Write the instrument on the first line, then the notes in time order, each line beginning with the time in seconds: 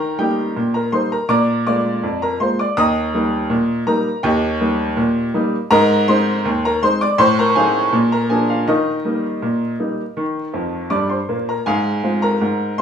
upright piano
Already playing: D#3 A#4 G5 A#5
0.18 G3 A#3 D#4 G4 G5
0.56 A#2
0.74 A#4 A#5
0.92 G3 A#3 D#4 C5 C6
1.12 A#4 A#5
1.29 A#2 D5 A#5 D6
1.67 G#3 A#3 F4 D5 D6
2.03 F2
2.22 A#4 A#5
2.40 G#3 A#3 F4 C5 C6
2.59 D5 D6
2.77 D#2 D#5 A#5 D#6
3.14 G3 A#3 D#4
3.50 A#2
3.87 G3 A#3 D#4 A#4 A#5
4.23 D#2 G4 D#5 G5
4.61 G3 A#3 D#4
4.97 A#2
5.34 G3 A#3 D#4
5.71 G#2 A#4 D#5 A#5
6.08 G#3 C4 D#4 C5 C6
6.45 D#2
6.65 A#4 A#5
6.83 G#3 C4 D#4 C5 C6
7.01 D5 D6
7.18 A2 C5 C6
7.39 A#4 A#5
7.55 F#3 C4 D#4 G#4 F5 G#5
7.93 A#2
8.12 A#4 A#5
8.30 F3 A#3 D4 G#4 G#5
8.50 F4 F5
8.68 D#3 D#4 A#4 D#5
9.05 G3 A#3 D#4
9.42 A#2
9.80 G3 A#3 D#4
10.17 D#3
10.53 F2 F3
10.90 G2 G3 D5 D6
11.09 C5 C6
11.29 A#2 A#3
11.49 A#4 A#5
11.66 G#2 G#4 F5 G#5
12.03 G#3 C4 F4
12.22 A#4 A#5
12.41 G#2
12.78 G#3 C4 C6